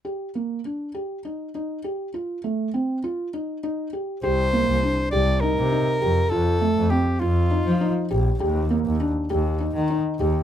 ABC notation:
X:1
M:7/8
L:1/16
Q:1/4=100
K:Fmix
V:1 name="Soprano saxophone"
z12 z2 | z12 z2 | c6 d2 B6 | A4 G2 F6 z2 |
z12 z2 |]
V:2 name="Felt piano"
G2 B,2 D2 G2 E2 E2 G2 | F2 A,2 C2 F2 E2 E2 G2 | G2 B,2 D2 G2 E2 E2 G2 | F2 A,2 C2 F2 E2 E2 G2 |
G2 B,2 D2 G2 E2 E2 G2 |]
V:3 name="Double bass" clef=bass
z12 z2 | z12 z2 | C,,3 C,,2 z C,,3 C,2 z F,,2 | F,,3 F,,2 z F,,3 F,2 z B,,,2 |
E,,3 E,,2 z E,,3 E,2 z E,,2 |]